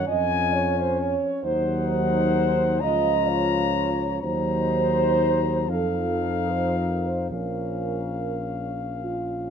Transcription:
0.07 1.15 F2 medium
0.07 1.15 F3 medium
0.07 1.44 C#4 medium
0.07 0.54 D#5 medium
0.07 1.15 G#5 medium
0.54 0.76 C#5 medium
0.78 1.00 C5 medium
1.00 1.44 C#5 medium
1.42 2.83 D#2 medium
1.42 2.77 F#3 medium
1.42 2.78 D#4 medium
1.42 1.87 C5 loud
1.42 2.81 F#5 medium
1.88 2.79 C5 loud
2.80 4.22 C#2 medium
2.80 4.20 F3 medium
2.80 4.04 F4 medium
2.80 3.28 D#5 loud
2.80 4.21 A#5 medium
3.28 4.22 C#5 medium
4.21 5.70 D#2 medium
4.21 5.71 F#3 medium
4.21 5.65 D#4 medium
4.21 5.66 C5 loud
4.21 5.71 A#5 medium
5.68 7.33 F2 medium
5.68 7.30 F3 medium
5.68 7.28 D#4 medium
5.68 6.48 A4 medium
5.68 7.30 F5 medium
6.50 6.76 C5 medium
6.76 7.03 A#4 medium
7.04 7.32 C5 medium
7.30 9.50 A#1 medium
7.30 8.89 F3 soft
7.30 9.50 C#4 soft
7.30 9.00 A#4 medium
7.30 9.50 F5 soft
9.03 9.50 F4 medium

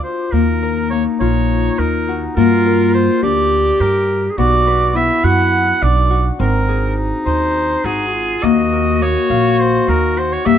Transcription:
0.00 0.33 A#3 medium
0.00 1.85 D4 medium
0.00 1.20 F4 medium
0.00 0.62 A#4 medium
0.00 0.33 C5 medium
0.32 1.05 D#2 medium
0.32 0.92 A#3 medium
0.32 2.32 D#4 medium
0.32 0.90 A#4 medium
0.63 2.65 A#4 medium
0.90 2.37 A#3 medium
0.90 1.04 C#5 medium
1.20 1.68 A#1 medium
1.20 2.14 F4 medium
1.20 1.80 C#5 medium
1.78 2.26 D#2 medium
1.78 3.29 D#4 medium
1.78 2.22 A#4 medium
2.08 3.87 F#4 medium
2.36 3.08 G2 medium
2.36 4.44 A#3 medium
2.36 3.24 F4 loud
2.36 2.90 A#4 medium
2.66 4.44 A#4 medium
2.94 3.21 C5 medium
3.22 3.70 D2 medium
3.22 5.81 D4 medium
3.22 4.32 G4 loud
3.22 3.82 D5 medium
3.80 4.28 G2 medium
3.80 5.30 G4 medium
3.80 4.24 A#4 medium
4.31 4.39 G#4 medium
4.38 5.09 B1 medium
4.38 4.95 B3 medium
4.38 4.97 F#4 loud
4.38 4.97 D5 loud
4.67 6.45 B4 medium
4.95 6.45 B3 medium
4.95 6.12 E4 medium
4.95 5.25 E5 medium
5.24 5.71 F#2 medium
5.24 6.10 F#4 medium
5.24 5.84 F#5 loud
5.81 6.29 B1 medium
5.81 7.33 D4 medium
5.81 6.25 D5 medium
6.10 7.85 F#4 medium
6.39 7.11 G#1 medium
6.39 9.39 C4 medium
6.39 8.03 D#4 medium
6.39 6.94 A#4 medium
6.69 8.96 G#4 medium
7.26 7.74 D#2 medium
7.26 9.87 D#4 medium
7.26 7.86 C5 medium
7.84 8.33 G#1 medium
7.84 9.36 F#4 medium
7.84 8.45 G#4 medium
8.07 8.15 F#4 soft
8.14 8.43 F4 medium
8.43 9.15 D#2 medium
8.43 9.01 A#3 medium
8.43 10.42 F#4 loud
8.43 9.04 D#5 medium
8.73 10.58 A#4 medium
9.01 10.45 A#3 medium
9.01 9.62 C#5 medium
9.30 9.78 A#1 medium
9.30 10.23 F5 medium
9.60 9.89 C5 medium
9.88 10.36 D#2 medium
9.88 10.58 D#4 medium
9.88 10.19 A#4 medium
10.17 10.58 F#4 medium
10.17 10.34 C5 medium
10.32 10.47 C#5 medium
10.46 10.58 G2 medium
10.46 10.58 A#3 medium
10.46 10.58 G4 loud
10.46 10.58 E5 medium

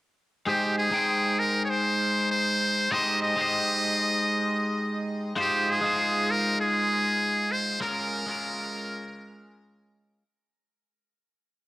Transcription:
0.47 0.89 G#3 medium
0.47 0.90 D#4 medium
0.47 0.90 G4 medium
0.47 0.76 G4 medium
0.47 0.91 C5 loud
0.78 1.41 G#4 medium
0.91 2.88 G#3 medium
0.91 2.88 D#4 medium
0.91 2.89 G5 medium
0.96 2.90 C5 medium
1.39 1.63 A#4 medium
1.65 1.71 C#5 medium
1.70 2.31 C5 medium
2.31 2.93 C5 loud
2.91 3.34 G#3 medium
2.91 3.35 D#4 medium
2.91 3.35 G4 medium
2.91 3.36 C5 loud
2.91 3.22 D#5 loud
3.23 5.03 D#5 loud
3.36 5.33 G#3 medium
3.36 5.33 D#4 medium
3.36 5.34 G4 medium
3.41 5.35 C5 medium
5.36 5.79 G#3 medium
5.36 5.79 D#4 medium
5.36 5.80 F4 medium
5.36 5.80 C5 loud
5.40 5.72 G4 medium
5.70 6.32 G#4 medium
5.81 7.78 G#3 medium
5.81 7.78 D#4 medium
5.81 7.79 F4 medium
5.86 7.80 C5 medium
6.31 6.60 A#4 medium
6.61 7.53 G#4 medium
7.52 7.81 C5 loud
7.80 8.24 G#3 medium
7.80 8.24 C#4 medium
7.80 8.25 F4 medium
7.80 9.62 A#4 loud
7.80 8.25 A#4 loud
8.26 10.23 G#3 medium
8.26 10.23 C#4 medium
8.26 10.24 F4 medium
8.31 10.25 A#4 medium

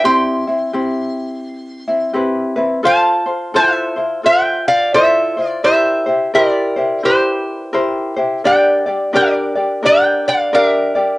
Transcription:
0.04 0.47 C4 medium
0.04 0.46 E4 medium
0.04 0.47 G4 medium
0.04 2.11 G5 medium
0.04 2.11 C6 medium
0.47 0.73 C4 soft
0.47 0.73 E4 soft
0.73 1.88 C4 medium
0.73 1.87 E4 medium
0.73 1.87 G4 medium
1.88 2.13 C4 soft
1.88 2.14 E4 soft
2.14 2.56 C4 medium
2.14 2.56 E4 medium
2.14 2.57 G4 medium
2.14 2.55 B4 medium
2.56 2.83 C4 soft
2.56 2.82 E4 medium
2.56 2.84 B4 medium
2.83 3.27 F4 medium
2.83 3.26 A4 medium
2.83 3.25 C5 medium
2.83 3.51 F5 medium
2.83 3.58 A5 medium
3.26 3.53 F4 soft
3.26 3.54 C5 soft
3.54 3.96 E4 medium
3.54 3.97 F4 medium
3.54 3.97 A4 medium
3.54 3.95 C5 medium
3.54 4.21 C5 medium
3.54 4.25 E5 medium
3.96 4.23 E4 soft
3.96 4.23 F4 soft
3.96 4.24 C5 soft
4.23 4.94 F4 medium
4.23 4.93 A4 medium
4.23 4.95 C5 medium
4.23 4.65 E5 medium
4.23 4.68 G5 loud
4.68 4.93 D5 medium
4.68 4.94 F5 medium
4.94 5.37 E4 medium
4.94 5.37 F4 medium
4.94 5.37 A4 medium
4.94 5.60 C5 medium
4.94 5.36 C5 medium
4.94 5.48 E5 medium
5.37 5.63 E4 soft
5.37 5.64 F4 soft
5.37 5.63 C5 medium
5.48 5.63 D5 medium
5.64 6.07 E4 medium
5.64 6.06 G4 medium
5.64 6.07 A#4 medium
5.64 6.30 C5 medium
5.64 6.05 C5 medium
5.64 6.30 E5 medium
6.06 6.33 E4 soft
6.06 6.33 G4 soft
6.06 6.34 C5 soft
6.34 6.77 E4 medium
6.34 6.76 G4 medium
6.34 6.77 A#4 medium
6.34 7.01 A#4 medium
6.34 6.75 C5 medium
6.34 7.07 D5 medium
6.76 7.02 E4 soft
6.76 7.03 G4 soft
6.76 7.04 C5 medium
7.03 7.72 E4 medium
7.03 7.74 G4 medium
7.03 8.13 G4 medium
7.03 7.72 A#4 medium
7.03 7.73 C5 medium
7.03 8.13 C5 medium
7.73 8.16 E4 medium
7.73 8.16 G4 medium
7.73 8.16 A#4 medium
7.73 8.15 C5 medium
8.16 8.45 E4 soft
8.16 8.44 G4 medium
8.16 8.44 C5 medium
8.44 8.87 D4 medium
8.44 8.86 G4 medium
8.44 8.87 A#4 medium
8.44 9.11 D5 medium
8.44 8.85 D5 medium
8.44 9.17 G5 medium
8.86 9.12 D4 soft
8.86 9.13 G4 soft
8.86 9.13 D5 medium
9.13 9.56 D4 medium
9.13 9.56 G4 medium
9.13 9.56 A#4 medium
9.13 9.81 A#4 medium
9.13 9.54 D5 medium
9.13 9.84 D5 medium
9.55 9.82 D4 soft
9.55 9.83 G4 soft
9.55 9.83 D5 soft
9.83 10.52 D4 medium
9.83 10.53 G4 medium
9.83 10.52 A#4 medium
9.83 10.53 D5 medium
9.83 10.24 D5 medium
9.83 10.28 G5 loud
10.28 10.53 D5 medium
10.28 10.55 F5 medium
10.53 10.96 D4 medium
10.53 10.95 G4 medium
10.53 10.96 A#4 medium
10.53 11.18 A#4 medium
10.53 10.94 D5 medium
10.53 10.66 F5 medium
10.66 11.18 E5 medium
10.95 11.18 D4 soft
10.95 11.18 G4 medium
10.95 11.18 D5 medium

